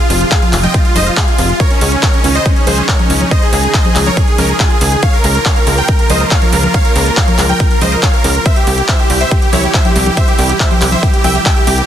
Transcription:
Already playing: C3 F3 G#3 F4
0.10 F1 F4, open hi-hat
0.21 F4, closed hi-hat
0.31 G#4 F5, kick, clap, closed hi-hat
0.42 F4, closed hi-hat, high conga
0.53 F1 F4, clap, open hi-hat
0.63 D#5 G5, closed hi-hat, high conga
0.74 F4, kick, closed hi-hat
0.85 F4, closed hi-hat
0.96 F1 C5 D#5, open hi-hat, high conga
1.06 F4, closed hi-hat
1.17 G#4 F5, kick, clap, closed hi-hat
1.28 F4, closed hi-hat
1.38 F1 F4, open hi-hat
1.49 F4, closed hi-hat
1.60 C#3 D#3 D#4 A#4 C#5, kick, closed hi-hat
1.71 C#4, closed hi-hat
1.81 C#2 C#4, open hi-hat
1.92 C#4, closed hi-hat
2.03 A#4 C#5, kick, clap, closed hi-hat
2.14 C#4, closed hi-hat
2.24 C#2 C#4, open hi-hat
2.35 C5 D#5, closed hi-hat
2.46 C#4, kick, closed hi-hat
2.56 C#4, closed hi-hat
2.67 C#2 G#4 C5, open hi-hat, high conga
2.78 C#4, closed hi-hat
2.88 A#4 C#5, kick, clap, closed hi-hat
2.99 C#4, closed hi-hat, high conga
3.10 C#2 C#4, open hi-hat
3.21 C#4, closed hi-hat, high conga
3.31 C5 D#5, kick, closed hi-hat
3.42 G#4, closed hi-hat
3.53 C#2 G#4, open hi-hat
3.63 G#4, closed hi-hat
3.74 C5 D#5, kick, clap, closed hi-hat
3.85 G#4, closed hi-hat, high conga
3.95 C#2 G#4, clap, open hi-hat
4.06 A#4 C#5, closed hi-hat, high conga
4.17 G#4, kick, closed hi-hat
4.27 G#4, closed hi-hat
4.38 C#2 C#4 A#4, open hi-hat, high conga
4.49 G#4, closed hi-hat
4.60 F4 G#4, kick, clap, closed hi-hat
4.70 G#4, closed hi-hat
4.81 C#2 G#4, open hi-hat
4.92 G#4, closed hi-hat
5.03 F3 A#3 F4 C#5 F5, kick, closed hi-hat
5.13 A#4, closed hi-hat
5.24 C#2 A#4, open hi-hat
5.35 A#4, closed hi-hat
5.45 C#5 F5, kick, clap, closed hi-hat
5.56 A#4, closed hi-hat
5.67 C#2 A#4, open hi-hat
5.78 A#4 G5, closed hi-hat
5.88 A#4, kick, closed hi-hat
5.99 A#4, closed hi-hat
6.10 C#2 C5 D#5, open hi-hat, high conga
6.20 A#4, closed hi-hat
6.31 C#5 F5, kick, clap, closed hi-hat
6.42 A#4, closed hi-hat, high conga
6.53 C#2 A#4, open hi-hat
6.63 A#4, closed hi-hat, high conga
6.74 C#5 F5, kick, closed hi-hat
6.85 A#4, closed hi-hat
6.96 C#2 A#4, open hi-hat
7.06 A#4, closed hi-hat
7.17 C#5 F5, kick, clap, closed hi-hat
7.28 A#4, closed hi-hat, high conga
7.38 C#2 A#4, clap, open hi-hat
7.49 A#4 G5, closed hi-hat, high conga
7.60 A#4, kick, closed hi-hat
7.71 A#4, closed hi-hat
7.81 C#2 C5 D#5, open hi-hat, high conga
7.92 A#4, closed hi-hat
8.03 C#5 F5, kick, clap, closed hi-hat
8.14 A#4, closed hi-hat
8.24 C#2 A#4, open hi-hat
8.35 A#4, closed hi-hat
8.46 C3 E3 G3 E4 C5 E5, kick, closed hi-hat
8.56 G4, closed hi-hat
8.67 C2 G4, open hi-hat
8.78 G4, closed hi-hat
8.88 C5 E5, kick, clap, closed hi-hat
8.99 G4, closed hi-hat
9.10 C2 G4, open hi-hat
9.21 C5 E5, closed hi-hat
9.31 G4, kick, closed hi-hat
9.42 G4, closed hi-hat
9.53 C2 E4 C#5, open hi-hat, high conga
9.64 G4, closed hi-hat
9.74 C5 E5, kick, clap, closed hi-hat
9.85 G4, closed hi-hat, high conga
9.96 C2 G4, open hi-hat
10.06 G4, closed hi-hat, high conga
10.17 C5 E5, kick, closed hi-hat
10.28 G4, closed hi-hat
10.39 C2 G4, open hi-hat
10.49 G4, closed hi-hat
10.60 C5 E5, kick, clap, closed hi-hat
10.71 G4, closed hi-hat, high conga
10.81 C2 G4, clap, open hi-hat
10.92 C5 E5, closed hi-hat, high conga
11.03 G4, kick, closed hi-hat
11.13 G4, closed hi-hat
11.24 C2 E5 G5, open hi-hat, high conga
11.35 G4, closed hi-hat
11.46 E5 G5, kick, clap, closed hi-hat
11.56 G4, closed hi-hat
11.67 C2 G4, open hi-hat
11.78 G4, closed hi-hat

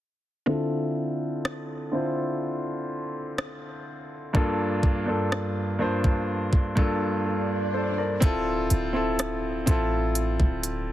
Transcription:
0.46 D3 C4 E4 F4 A4
1.45 cross-stick
1.92 D3 C4 E4 F4 C5
3.38 cross-stick
4.33 G2 A#3 D4 F4 A4, kick
4.83 kick
5.06 G2 A#3 D4 F4 A4
5.32 cross-stick
5.79 G2 A#3 D4 F4 C5
6.04 kick
6.53 kick
6.75 G2 A#3 D4 F4 A4, kick
7.26 F4 A4
7.74 A4 C5
7.98 A#4 D5
8.20 D1 C4 E4 F4 A4, kick, closed hi-hat
8.70 D1, closed hi-hat
8.93 C4 E4 F4 A4
9.19 cross-stick, closed hi-hat
9.66 A1 C4 E4 F4 A4, kick, closed hi-hat
10.15 closed hi-hat
10.40 D1, kick
10.63 closed hi-hat

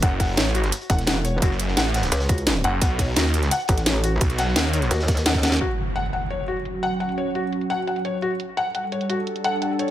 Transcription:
0.02 F#1 F#5, kick, closed hi-hat
0.20 F#5, kick, snare, closed hi-hat, open hi-hat
0.37 A1 C#5, snare, closed hi-hat
0.46 snare
0.54 F#4, closed hi-hat
0.63 snare, closed hi-hat
0.72 closed hi-hat
0.81 closed hi-hat
0.90 E1 F#5, kick, closed hi-hat
0.99 snare, closed hi-hat
1.07 F#5, snare, closed hi-hat
1.25 C#5, closed hi-hat
1.42 F#1 F#4, kick, closed hi-hat
1.51 snare
1.59 closed hi-hat
1.68 snare
1.77 A1 F#5, snare, closed hi-hat
1.86 snare
1.94 F#5, snare, closed hi-hat
2.03 snare, closed hi-hat
2.12 C#2 C#5, snare, closed hi-hat
2.20 snare, closed hi-hat
2.29 F#4, kick, closed hi-hat
2.38 closed hi-hat
2.47 snare, closed hi-hat
2.64 F#1 F#5, closed hi-hat
2.81 B1 F#5, kick, closed hi-hat
2.99 C#5, kick, snare, closed hi-hat, open hi-hat
3.16 D#2 F#4, snare, closed hi-hat
3.25 snare
3.34 closed hi-hat
3.42 snare, closed hi-hat
3.51 F#5, closed hi-hat
3.60 closed hi-hat
3.68 A1 F#5, kick, closed hi-hat
3.78 snare, closed hi-hat
3.86 C#5, snare, closed hi-hat
4.04 F#4, closed hi-hat
4.21 B1, kick, closed hi-hat
4.29 snare, closed hi-hat
4.38 F#5, snare, closed hi-hat
4.48 snare
4.56 D#2 F#5, snare, closed hi-hat
4.64 snare
4.73 C#5, closed hi-hat
4.82 snare, closed hi-hat
4.91 D#2 F#4, snare, closed hi-hat
4.99 snare, closed hi-hat
5.08 kick, snare, closed hi-hat
5.17 snare, closed hi-hat
5.26 F#5, snare, closed hi-hat
5.34 kick, snare
5.43 F#5, snare, closed hi-hat
5.52 snare
5.61 F#3 C#4 F#4, closed hi-hat, impact
5.78 closed hi-hat
5.96 F#5, closed hi-hat
6.13 F#5, closed hi-hat
6.22 closed hi-hat
6.30 C#5, closed hi-hat
6.48 F#4, closed hi-hat
6.57 closed hi-hat
6.65 closed hi-hat
6.83 F#5, closed hi-hat
7.00 F#5, closed hi-hat
7.09 closed hi-hat
7.18 C#5, closed hi-hat
7.35 F#4, closed hi-hat
7.53 closed hi-hat
7.61 closed hi-hat
7.70 F#5, closed hi-hat
7.87 F#5, closed hi-hat
7.96 closed hi-hat
8.05 C#5, closed hi-hat
8.22 F#4, closed hi-hat
8.40 G3 D4 A4, closed hi-hat
8.57 F#5, closed hi-hat
8.75 F#5, closed hi-hat
8.92 C#5, closed hi-hat
9.01 closed hi-hat
9.10 F#4, closed hi-hat
9.27 closed hi-hat
9.36 closed hi-hat
9.44 F#5, closed hi-hat
9.62 F#5, closed hi-hat
9.79 C#5, closed hi-hat

